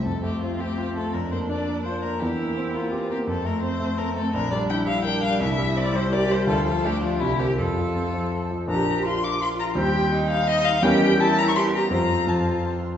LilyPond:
<<
  \new Staff \with { instrumentName = "Violin" } { \time 3/4 \key f \major \tempo 4 = 168 a'8 g'8 f'8 g'4 a'8 | bes'8 c''8 d''4 c''8 bes'8 | g'4. f'4 g'8 | a'8 bes'8 c''4 bes'8 a'8 |
bes'8 d''8 g''8 f''8 g''8 f''8 | e''4 d''8 c''8 d''8 c''8 | a'8 a'8 g'8 f'8 e'8 g'8 | f'2 r4 |
\key bes \major bes''4 c'''8 d'''8 c'''8 bes''8 | g''4. f''8 ees''8 f''8 | g''4 a''8 bes''16 cis'''16 c'''8 bes''8 | bes''4 a''4 r4 | }
  \new Staff \with { instrumentName = "Cello" } { \time 3/4 \key f \major c'2. | d'2. | e'2 c'4 | c'2. |
d'4 e'4 d'4 | e'2 g'4 | f'4 d'4 g'4 | a'2~ a'8 r8 |
\key bes \major g'4 f'4 f'4 | g'4 ees'2 | g'4 e'4 g'4 | f'2~ f'8 r8 | }
  \new Staff \with { instrumentName = "Grand piano" } { \time 3/4 \key f \major f,8 a8 c'8 a8 f'8 a8 | f,8 bes8 d'8 bes8 f'8 bes8 | e,8 bes8 c'8 bes8 g'8 bes8 | f,8 a8 c'8 a8 a'8 a8 |
bes,,8 g8 d'8 g8 bes'8 g8 | c,8 g8 c'8 g8 bes'8 g8 | d,8 f8 a8 f8 c,8 <c' bes'>8 | f,8 f8 c'8 f8 a'8 f8 |
\key bes \major <bes,, f d' bes'>2. | <ees, g c' c''>2. | <e, g cis' bes'>2. | <f, f c' c''>4 <f, f c' c''>2 | }
>>